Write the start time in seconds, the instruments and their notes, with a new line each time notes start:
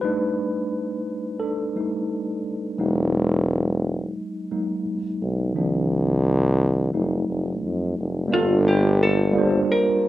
0.01 tine electric piano G3 A3 D4 D#4 B4
1.40 tine electric piano D4 A4
1.76 tine electric piano G3 A3 D#4
2.79 tuba E1, tine electric piano F#3 G#3 A#3 D#4
4.51 tine electric piano F#3 G#3 A#3 D#4
5.22 tuba B1
5.55 tuba C2, tine electric piano D#3 F3 A#3 D4
6.93 tuba F1, tine electric piano F#3 A3 D#4
7.29 tuba F1
7.63 tuba F2
7.98 tuba F1
8.28 tine electric piano G3 A#3 D4
8.32 tuba G1, tine electric piano F4 A4, hollow-body jazz guitar F4
8.68 hollow-body jazz guitar G4
9.03 hollow-body jazz guitar A4
9.32 tine electric piano G3 A#3 D4
9.37 tine electric piano F4 C5
9.72 hollow-body jazz guitar A#4